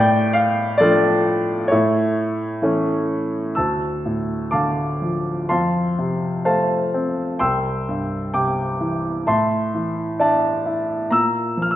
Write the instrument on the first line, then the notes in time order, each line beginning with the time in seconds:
grand piano
Already playing: A2 D5 G5
0.33 F5
0.78 F3 A3 D4 F4 A4 D5
1.68 E4 A4 C#5
1.72 A2
2.62 E3 A3 C#4
3.55 D2 A5 E6
4.05 A2
4.51 D3 F5 A5 D6
5.02 F3
5.49 F2 F5 A5 C6
5.99 C3
6.45 A3 C5 F5 A5
6.94 C4
7.39 C2 G5 C6 E6
7.89 G2
8.34 C3 G5 D6
8.81 E3
9.27 A2 E5 A5 C6
9.74 E3
10.19 D4 D5 E5 A5
10.66 E4
11.10 A#2 A#5 E6
11.57 F3
11.62 F6
11.71 E6